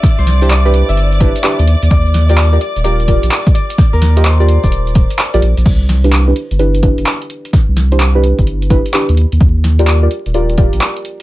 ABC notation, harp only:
X:1
M:4/4
L:1/16
Q:"Swing 16ths" 1/4=128
K:C
V:1 name="Harp"
z c z2 d z2 e z8 | d z2 d z2 d z d z4 z d z | z _B z2 c z2 d z8 | z16 |
z16 | z16 |]